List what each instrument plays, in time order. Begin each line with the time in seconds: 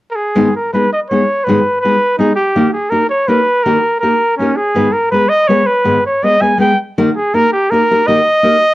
0.11 trumpet A#4
0.16 trumpet G#4
0.35 nylon-string guitar G#2 D#3 G#3 B3 D#4 G#4
0.56 trumpet A#4
0.73 nylon-string guitar G#3 B3 D#4 G#4, trumpet B4
0.93 trumpet D#5
1.10 nylon-string guitar G#3 B3 D#4 G#4, trumpet C#5
1.44 nylon-string guitar G#2, trumpet B4
1.48 nylon-string guitar D#3 G#3 B3 D#4 G#4
1.80 trumpet B4
1.85 nylon-string guitar G#3 B3 D#4 G#4
2.18 nylon-string guitar G#3 B3 D#4 G#4, trumpet D#4
2.36 trumpet G4
2.56 nylon-string guitar D#3 A#3 D#4 G4 A#4
2.73 trumpet G#4
2.90 nylon-string guitar A#3 D#4 G4 A#4, trumpet A#4
3.10 trumpet C#5
3.28 nylon-string guitar A#3 D#4 G4 A#4, trumpet B4
3.63 nylon-string guitar D#3 A#3 D#4 G4 A#4, trumpet A#4
4.00 nylon-string guitar A#3 D#4 G4, trumpet A#4
4.04 nylon-string guitar A#4
4.38 nylon-string guitar A#3 D#4 G4, trumpet C#4
4.42 nylon-string guitar A#4
4.56 trumpet G#4
4.75 nylon-string guitar G#2 D#3 G#3 B3 G#4 B4
4.93 trumpet A#4
5.11 nylon-string guitar G#3 B3 G#4 B4, trumpet B4
5.29 trumpet D#5
5.48 nylon-string guitar G#3 B3 G#4 B4, trumpet C#5
5.67 trumpet B4
5.85 nylon-string guitar G#2 D#3 G#3 B3 G#4 B4
6.06 trumpet C#5
6.23 nylon-string guitar G#3 B3 G#4 B4, trumpet D#5
6.41 nylon-string guitar G#3 B3 G#4 B4, trumpet G#5
6.58 nylon-string guitar G#3 B3 G#4 B4, trumpet G5
6.98 nylon-string guitar D#3 A#3 D#4 G4 A#4
7.16 trumpet G#4
7.34 nylon-string guitar A#3 D#4 G4 A#4, trumpet A#4
7.52 trumpet G4
7.70 nylon-string guitar A#3 D#4 G4 A#4, trumpet A#4
7.91 nylon-string guitar A#3 D#4 G4 A#4
8.07 nylon-string guitar D#3 A#3 D#4 G4 A#4, trumpet D#5
8.43 nylon-string guitar A#3 D#4 G4 A#4